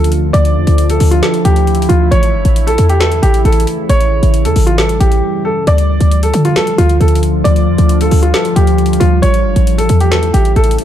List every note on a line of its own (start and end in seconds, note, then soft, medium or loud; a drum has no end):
0.00 0.32 D2 loud
0.00 2.08 D3 medium
0.00 2.08 F3 medium
0.00 3.86 A3 medium
0.00 0.32 F4 medium
0.04 closed hi-hat medium
0.12 closed hi-hat medium
0.33 0.58 D2 loud
0.33 5.63 E4 medium
0.33 0.86 D5 medium
0.33 closed hi-hat medium
0.45 closed hi-hat medium
0.56 0.67 F2 loud
0.67 0.99 D2 loud
0.67 closed hi-hat medium
0.78 closed hi-hat medium
0.90 1.07 A4 medium
0.90 closed hi-hat medium
1.00 1.22 D2 loud
1.00 open hi-hat medium
1.11 1.20 F4 medium
1.11 closed hi-hat medium
1.23 1.40 A4 medium
1.23 snare medium
1.23 closed hi-hat medium
1.34 closed hi-hat medium
1.45 1.88 D2 loud
1.45 1.87 G4 medium
1.45 closed hi-hat medium
1.56 closed hi-hat medium
1.67 closed hi-hat soft
1.75 closed hi-hat medium
1.82 closed hi-hat medium
1.89 2.11 D2 loud
1.89 2.06 F4 medium
1.89 closed hi-hat medium
2.11 2.36 A1 loud
2.11 5.64 C#3 medium
2.11 5.64 E3 medium
2.11 2.64 C#5 medium
2.11 closed hi-hat medium
2.23 closed hi-hat medium
2.34 2.45 G1 loud
2.45 2.69 A1 loud
2.45 closed hi-hat medium
2.56 closed hi-hat medium
2.67 2.78 A#1 loud
2.67 2.84 A4 medium
2.67 closed hi-hat medium
2.78 3.21 E2 loud
2.78 closed hi-hat medium
2.89 2.98 G4 medium
2.89 closed hi-hat medium
3.00 3.17 A4 medium
3.00 snare loud
3.00 closed hi-hat medium
3.12 closed hi-hat medium
3.22 3.44 A1 loud
3.22 3.39 G4 medium
3.22 closed hi-hat medium
3.34 closed hi-hat medium
3.45 3.66 A1 loud
3.45 3.62 A4 medium
3.45 closed hi-hat soft
3.53 closed hi-hat medium
3.60 closed hi-hat medium
3.67 closed hi-hat medium
3.89 4.21 A1 loud
3.89 5.65 G3 medium
3.89 4.42 C#5 loud
3.89 closed hi-hat medium
4.01 closed hi-hat medium
4.23 4.47 A1 loud
4.23 closed hi-hat medium
4.34 closed hi-hat medium
4.45 4.56 E2 loud
4.45 4.62 A4 medium
4.45 closed hi-hat medium
4.56 4.99 A1 loud
4.56 open hi-hat medium
4.67 4.75 F4 medium
4.67 closed hi-hat medium
4.78 4.95 A4 medium
4.78 snare loud
4.78 closed hi-hat medium
4.89 closed hi-hat medium
5.00 5.22 A1 loud
5.00 5.42 G4 medium
5.00 closed hi-hat medium
5.12 closed hi-hat medium
5.45 5.62 A4 medium
5.67 5.99 D2 loud
5.67 9.19 D3 medium
5.67 9.19 F3 medium
5.67 7.43 A3 medium
5.67 9.19 F4 medium
5.67 6.20 D5 loud
5.67 closed hi-hat medium
5.78 closed hi-hat medium
6.01 6.33 D2 loud
6.01 closed hi-hat medium
6.11 closed hi-hat medium
6.23 6.40 A4 medium
6.23 closed hi-hat medium
6.34 6.55 D3 loud
6.34 closed hi-hat medium
6.45 6.53 F4 medium
6.45 closed hi-hat medium
6.56 6.73 A4 medium
6.56 snare loud
6.56 closed hi-hat medium
6.67 closed hi-hat medium
6.78 7.00 D2 loud
6.78 6.95 F4 medium
6.78 closed hi-hat medium
6.89 closed hi-hat medium
7.01 7.43 D2 loud
7.01 7.18 A4 medium
7.01 closed hi-hat soft
7.08 closed hi-hat medium
7.15 closed hi-hat medium
7.23 closed hi-hat medium
7.44 7.69 D2 loud
7.44 9.21 G3 medium
7.44 7.97 D5 loud
7.44 closed hi-hat medium
7.56 closed hi-hat medium
7.67 7.78 F2 loud
7.78 8.10 D2 loud
7.78 closed hi-hat medium
7.89 closed hi-hat medium
8.01 8.18 A4 medium
8.01 closed hi-hat medium
8.11 8.33 D2 loud
8.11 open hi-hat medium
8.23 8.31 F4 medium
8.23 closed hi-hat medium
8.34 8.51 A4 medium
8.34 snare loud
8.34 closed hi-hat medium
8.45 closed hi-hat medium
8.56 8.99 D2 loud
8.56 8.98 G4 medium
8.56 closed hi-hat medium
8.67 closed hi-hat medium
8.78 closed hi-hat soft
8.86 closed hi-hat medium
8.93 closed hi-hat medium
9.00 9.22 D2 loud
9.00 9.17 F4 medium
9.00 closed hi-hat medium
9.22 9.47 A1 loud
9.22 10.84 C#3 medium
9.22 10.84 E3 medium
9.22 10.84 A3 medium
9.22 10.84 E4 medium
9.22 9.75 C#5 loud
9.22 closed hi-hat medium
9.34 closed hi-hat medium
9.45 9.56 G1 loud
9.56 9.80 A1 loud
9.56 closed hi-hat medium
9.67 closed hi-hat medium
9.78 9.89 A#1 loud
9.78 9.95 A4 medium
9.78 closed hi-hat medium
9.89 10.32 E2 loud
9.89 closed hi-hat medium
10.00 10.09 G4 medium
10.00 closed hi-hat medium
10.11 10.28 A4 medium
10.11 snare loud
10.11 closed hi-hat medium
10.23 closed hi-hat medium
10.34 10.55 A1 loud
10.34 10.51 G4 medium
10.34 closed hi-hat medium
10.45 closed hi-hat medium
10.56 10.77 A1 loud
10.56 10.73 A4 medium
10.56 closed hi-hat soft
10.64 closed hi-hat medium
10.71 closed hi-hat medium
10.78 closed hi-hat medium